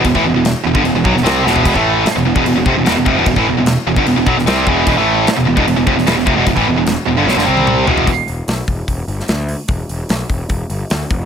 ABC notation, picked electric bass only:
X:1
M:4/4
L:1/16
Q:1/4=149
K:Em
V:1 name="Picked electric bass" clef=bass
E,,, A,,, E,,, E,,,2 z E,,, G,,, E,,, E,,, B,,, E,,, C,,2 E,,,2 | E,,, A,,,3 z E,,, E,,, E,,, E,,, E,,, =F,,, E,,, E,,, E,,, F,,, E,,, | E,,, A,,, E,,, E,,,2 z E,,, G,,, E,,, E,,, B,,, E,,, C,,2 E,,,2 | E,,, A,,,3 z E,,, E,,, E,,, E,,, E,,, =F,,, E,,, E,,, E,,, F,,, E,,, |
E,,, A,,, E,,, E,,,2 z E,,, G,,, B,,, G,,, C,,4 E,,,2 | E,,,2 E,,,2 B,,,2 E,,,2 E,,,2 G,,,2 D,,4 | E,,,2 E,,,2 B,,,2 E,,,2 E,,,2 G,,,2 D,,2 =F,,,2 |]